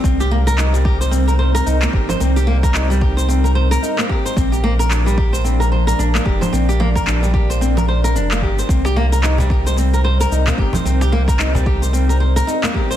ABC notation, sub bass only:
X:1
M:4/4
L:1/8
Q:"Swing 16ths" 1/4=111
K:Cm
V:1 name="Sub bass" clef=bass
C,,6 C,, G,,, | C,,6 z2 | B,,,6 B,,, F,,, | B,,,6 F,,, G,,, |
C,,6 C,, G,,, | C,,6 z2 |]